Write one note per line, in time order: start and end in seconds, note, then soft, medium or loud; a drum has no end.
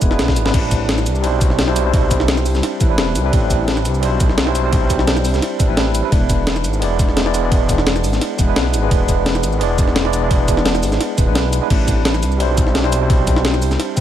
0.01 0.21 E1 medium
0.01 0.09 G#3 medium
0.01 0.09 B3 medium
0.01 0.09 D4 medium
0.01 0.10 E4 medium
0.01 0.10 B4 medium
0.01 kick loud
0.01 closed hi-hat medium
0.01 cabasa medium
0.10 0.43 G#3 medium
0.10 0.43 B3 medium
0.10 0.44 D4 medium
0.10 0.44 E4 medium
0.10 0.44 B4 medium
0.10 snare soft
0.19 0.38 B1 medium
0.19 snare loud
0.19 closed hi-hat medium
0.28 kick medium
0.28 snare medium
0.36 0.52 G#1 loud
0.36 closed hi-hat medium
0.36 cabasa medium
0.44 0.51 G#3 medium
0.44 0.52 B3 medium
0.44 0.52 D4 medium
0.44 0.52 E4 medium
0.44 0.53 B4 medium
0.44 snare loud
0.51 1.08 A1 loud
0.51 1.20 G3 medium
0.51 1.21 C4 medium
0.51 1.22 D4 medium
0.51 1.22 E4 medium
0.51 kick loud
0.51 closed hi-hat medium
0.51 crash loud
0.51 ride medium
0.56 1.23 B4 medium
0.71 kick medium
0.71 closed hi-hat medium
0.71 cabasa medium
0.89 snare loud
0.89 closed hi-hat medium
0.89 ride medium
0.98 snare medium
0.98 cabasa soft
1.06 1.25 C2 medium
1.06 closed hi-hat loud
1.06 cabasa medium
1.15 cabasa soft
1.21 2.47 B1 medium
1.21 1.64 G3 loud
1.21 1.65 C4 medium
1.21 1.66 D4 medium
1.21 1.66 E4 medium
1.21 closed hi-hat medium
1.21 ride medium
1.26 1.67 C5 loud
1.41 kick loud
1.41 closed hi-hat loud
1.41 cabasa medium
1.50 snare soft
1.59 snare loud
1.59 closed hi-hat medium
1.59 ride medium
1.66 1.82 G3 loud
1.66 1.83 C4 medium
1.66 1.83 D4 medium
1.66 1.83 E4 medium
1.66 1.84 C5 loud
1.66 snare medium
1.76 closed hi-hat loud
1.76 cabasa medium
1.84 1.90 G3 medium
1.84 1.91 C4 medium
1.84 1.92 D4 medium
1.84 1.92 E4 medium
1.84 1.92 C5 medium
1.91 2.77 G3 medium
1.91 2.78 C4 medium
1.91 2.79 D4 medium
1.91 2.79 E4 medium
1.91 kick loud
1.91 closed hi-hat medium
1.91 ride medium
1.96 2.80 C5 medium
2.11 kick medium
2.11 closed hi-hat medium
2.11 cabasa medium
2.20 snare medium
2.28 snare loud
2.28 closed hi-hat medium
2.28 ride medium
2.37 snare medium
2.37 cabasa soft
2.46 2.62 C2 medium
2.46 open hi-hat medium
2.46 cabasa medium
2.55 snare soft
2.55 cabasa soft
2.63 snare medium
2.63 closed hi-hat medium
2.63 ride medium
2.79 3.00 A1 medium
2.79 2.87 G3 medium
2.79 2.88 C4 medium
2.79 2.88 D4 medium
2.79 2.89 E4 medium
2.79 2.89 B4 medium
2.79 kick loud
2.79 closed hi-hat medium
2.79 cabasa medium
2.88 3.22 G3 medium
2.88 3.22 C4 medium
2.88 3.22 D4 medium
2.88 3.23 E4 medium
2.88 3.23 B4 medium
2.98 3.17 E1 medium
2.98 snare loud
2.98 closed hi-hat medium
2.98 ride medium
3.15 3.31 C2 loud
3.15 closed hi-hat loud
3.15 cabasa medium
3.23 3.29 G3 medium
3.23 3.31 C4 medium
3.23 3.31 D4 medium
3.23 3.31 E4 medium
3.23 3.32 B4 loud
3.31 3.87 A1 loud
3.31 3.99 G3 medium
3.31 4.00 C4 medium
3.31 4.01 D4 medium
3.31 kick loud
3.31 closed hi-hat medium
3.31 ride medium
3.36 4.02 B4 medium
3.50 kick medium
3.50 closed hi-hat medium
3.50 cabasa medium
3.68 snare loud
3.68 closed hi-hat medium
3.68 ride medium
3.77 snare soft
3.77 cabasa soft
3.85 4.04 C2 medium
3.85 closed hi-hat medium
3.85 cabasa medium
3.94 cabasa soft
4.00 5.26 B1 medium
4.00 4.43 G3 medium
4.00 4.44 C4 medium
4.00 4.45 D4 medium
4.00 4.45 E4 medium
4.00 closed hi-hat medium
4.00 ride medium
4.05 4.46 C5 loud
4.20 kick loud
4.20 closed hi-hat medium
4.20 cabasa medium
4.29 snare soft
4.38 snare loud
4.38 closed hi-hat medium
4.38 ride medium
4.46 4.61 G3 loud
4.46 4.62 C4 medium
4.46 4.62 D4 medium
4.46 4.62 E4 medium
4.46 4.63 C5 loud
4.46 snare medium
4.55 closed hi-hat medium
4.55 cabasa medium
4.63 4.69 G3 medium
4.63 4.70 C4 medium
4.63 4.71 D4 medium
4.63 4.71 E4 medium
4.63 4.71 C5 loud
4.70 5.57 G3 medium
4.70 5.57 C4 medium
4.70 5.58 D4 medium
4.70 5.58 E4 medium
4.70 kick loud
4.70 closed hi-hat medium
4.70 ride medium
4.75 5.59 C5 medium
4.90 kick medium
4.90 closed hi-hat medium
4.90 cabasa medium
4.99 snare medium
5.07 snare loud
5.07 closed hi-hat medium
5.07 ride medium
5.17 snare soft
5.17 cabasa soft
5.25 5.41 C2 medium
5.25 open hi-hat medium
5.25 cabasa medium
5.34 snare soft
5.34 cabasa soft
5.42 snare soft
5.42 closed hi-hat medium
5.42 ride medium
5.59 5.66 G3 medium
5.59 5.67 C4 medium
5.59 5.68 D4 medium
5.59 5.68 E4 medium
5.59 5.68 B4 medium
5.59 kick loud
5.59 closed hi-hat medium
5.59 cabasa medium
5.68 6.02 A1 medium
5.68 6.01 G3 medium
5.68 6.01 C4 medium
5.68 6.02 D4 medium
5.68 6.02 E4 medium
5.68 6.02 B4 medium
5.77 snare loud
5.77 closed hi-hat medium
5.77 ride medium
5.95 closed hi-hat medium
5.95 cabasa medium
6.03 6.09 G3 medium
6.03 6.10 C4 medium
6.03 6.10 D4 medium
6.03 6.10 E4 medium
6.03 6.11 B4 medium
6.10 6.66 E1 loud
6.10 6.78 G#3 medium
6.10 6.79 B3 medium
6.10 6.80 D4 medium
6.10 6.80 E4 medium
6.10 kick loud
6.10 closed hi-hat medium
6.10 ride medium
6.14 6.81 B4 medium
6.30 kick medium
6.30 closed hi-hat medium
6.30 cabasa medium
6.47 snare loud
6.47 closed hi-hat medium
6.47 ride medium
6.56 snare soft
6.56 cabasa soft
6.64 6.84 G#1 medium
6.64 closed hi-hat medium
6.64 cabasa medium
6.74 cabasa soft
6.79 8.05 E1 medium
6.79 7.22 G#3 loud
6.79 7.23 B3 medium
6.79 7.24 D4 medium
6.79 7.24 E4 medium
6.79 closed hi-hat medium
6.79 ride medium
6.84 7.25 D5 loud
6.99 kick loud
6.99 closed hi-hat medium
6.99 cabasa medium
7.09 snare soft
7.17 snare loud
7.17 closed hi-hat medium
7.17 ride medium
7.25 7.41 G#3 loud
7.25 7.41 B3 medium
7.25 7.41 D4 medium
7.25 7.41 E4 medium
7.25 7.42 D5 loud
7.25 snare soft
7.34 closed hi-hat medium
7.34 cabasa medium
7.42 7.48 G#3 medium
7.42 7.49 B3 medium
7.42 7.50 D4 medium
7.42 7.50 E4 medium
7.42 7.50 D5 medium
7.49 8.36 G#3 medium
7.49 8.36 B3 medium
7.49 8.37 D4 medium
7.49 8.37 E4 medium
7.49 kick loud
7.49 closed hi-hat medium
7.49 ride medium
7.54 8.38 D5 medium
7.69 kick medium
7.69 closed hi-hat medium
7.69 cabasa medium
7.78 snare medium
7.87 snare loud
7.87 closed hi-hat medium
7.87 ride medium
7.96 snare soft
7.96 cabasa soft
8.04 8.20 G#1 medium
8.04 open hi-hat medium
8.04 cabasa medium
8.13 snare soft
8.13 cabasa soft
8.21 snare soft
8.21 closed hi-hat medium
8.21 ride medium
8.37 8.58 E1 medium
8.37 8.46 G#3 medium
8.37 8.46 B3 medium
8.37 8.47 D4 medium
8.37 8.47 E4 medium
8.37 8.47 B4 medium
8.37 kick loud
8.37 closed hi-hat medium
8.37 cabasa medium
8.47 8.80 G#3 medium
8.47 8.80 B3 medium
8.47 8.81 D4 medium
8.47 8.81 E4 medium
8.47 8.81 B4 medium
8.56 8.75 B1 medium
8.56 snare loud
8.56 closed hi-hat medium
8.56 ride medium
8.74 8.90 G#1 loud
8.74 closed hi-hat loud
8.74 cabasa medium
8.82 8.87 G#3 medium
8.82 8.89 B3 medium
8.82 8.89 D4 medium
8.82 8.90 E4 medium
8.82 8.90 B4 loud
8.89 9.45 E1 loud
8.89 9.57 G#3 medium
8.89 9.58 B3 medium
8.89 9.59 D4 medium
8.89 9.60 E4 medium
8.89 kick loud
8.89 closed hi-hat medium
8.89 ride medium
8.94 9.60 B4 medium
9.09 kick medium
9.09 closed hi-hat loud
9.09 cabasa medium
9.26 snare loud
9.26 closed hi-hat medium
9.26 ride medium
9.35 snare soft
9.35 cabasa soft
9.43 9.62 G#1 medium
9.43 closed hi-hat medium
9.43 cabasa medium
9.53 cabasa soft
9.59 10.85 E1 medium
9.59 10.02 G#3 loud
9.59 10.02 B3 medium
9.59 10.03 D4 medium
9.59 10.03 E4 medium
9.59 closed hi-hat medium
9.59 ride medium
9.63 10.04 D5 loud
9.78 kick loud
9.78 closed hi-hat loud
9.78 cabasa medium
9.88 snare soft
9.96 snare loud
9.96 closed hi-hat medium
9.96 ride medium
10.04 10.20 G#3 loud
10.04 10.20 B3 medium
10.04 10.20 D4 medium
10.04 10.21 E4 medium
10.04 10.21 D5 loud
10.04 snare soft
10.13 closed hi-hat loud
10.13 cabasa medium
10.21 10.27 G#3 medium
10.21 10.28 B3 medium
10.21 10.29 D4 medium
10.21 10.29 E4 medium
10.21 10.29 D5 medium
10.28 11.15 G#3 medium
10.28 11.15 B3 medium
10.28 11.17 E4 medium
10.28 kick loud
10.28 closed hi-hat medium
10.28 ride medium
10.33 11.17 D5 medium
10.48 kick medium
10.48 closed hi-hat loud
10.48 cabasa medium
10.57 snare medium
10.66 snare loud
10.66 closed hi-hat medium
10.66 ride medium
10.75 snare soft
10.75 cabasa soft
10.83 10.99 G#1 medium
10.83 open hi-hat medium
10.83 cabasa medium
10.92 snare soft
10.92 cabasa soft
11.00 snare soft
11.00 closed hi-hat medium
11.00 ride medium
11.17 11.29 D1 loud
11.17 11.25 G#3 medium
11.17 11.25 B3 medium
11.17 11.26 D4 medium
11.17 11.26 E4 medium
11.17 11.26 B4 medium
11.17 kick loud
11.17 closed hi-hat loud
11.17 cabasa medium
11.26 11.61 B1 loud
11.26 11.59 G#3 medium
11.26 11.59 B3 medium
11.26 11.60 D4 medium
11.26 11.60 E4 medium
11.26 11.60 B4 medium
11.35 snare loud
11.35 closed hi-hat medium
11.35 ride medium
11.53 closed hi-hat loud
11.53 cabasa medium
11.61 11.68 G#3 medium
11.61 11.68 B3 medium
11.61 11.68 D4 medium
11.61 11.69 E4 medium
11.61 11.69 B4 medium
11.68 12.24 A1 loud
11.68 12.37 G3 medium
11.68 12.37 C4 medium
11.68 12.38 D4 medium
11.68 12.39 E4 medium
11.68 kick loud
11.68 closed hi-hat medium
11.68 crash medium
11.68 ride medium
11.88 kick medium
11.88 closed hi-hat medium
11.88 cabasa medium
12.05 snare loud
12.05 closed hi-hat medium
12.05 ride medium
12.14 snare medium
12.14 cabasa soft
12.23 12.42 C2 medium
12.23 closed hi-hat medium
12.23 cabasa medium
12.32 cabasa soft
12.38 13.64 B1 medium
12.38 12.81 G3 loud
12.38 12.81 C4 medium
12.38 12.82 D4 medium
12.38 12.83 E4 medium
12.38 closed hi-hat medium
12.38 ride medium
12.43 12.83 C5 loud
12.58 kick loud
12.58 closed hi-hat loud
12.58 cabasa medium
12.67 snare soft
12.75 snare loud
12.75 closed hi-hat medium
12.75 ride medium
12.83 12.99 G3 loud
12.83 12.99 C4 medium
12.83 12.99 D4 medium
12.83 13.00 E4 medium
12.83 13.00 C5 loud
12.83 snare medium
12.92 closed hi-hat loud
12.92 cabasa medium
13.00 13.06 G3 medium
13.00 13.08 C4 medium
13.00 13.08 D4 medium
13.00 13.08 E4 medium
13.00 13.08 C5 medium
13.07 13.94 G3 medium
13.07 13.95 C4 medium
13.07 13.95 D4 medium
13.07 13.96 E4 medium
13.07 kick loud
13.07 closed hi-hat medium
13.07 ride medium
13.12 13.96 C5 medium
13.27 kick medium
13.27 closed hi-hat medium
13.27 cabasa medium
13.36 snare medium
13.45 snare loud
13.45 closed hi-hat medium
13.45 ride medium
13.54 snare medium
13.54 cabasa soft
13.62 13.78 C2 medium
13.62 open hi-hat medium
13.62 cabasa medium
13.71 snare soft
13.71 cabasa soft
13.80 snare medium
13.80 closed hi-hat medium
13.80 ride medium
13.96 14.01 A1 medium
13.96 14.01 G3 medium
13.96 14.01 C4 medium
13.96 14.01 D4 medium
13.96 14.01 E4 medium
13.96 kick loud
13.96 closed hi-hat medium
13.96 cabasa medium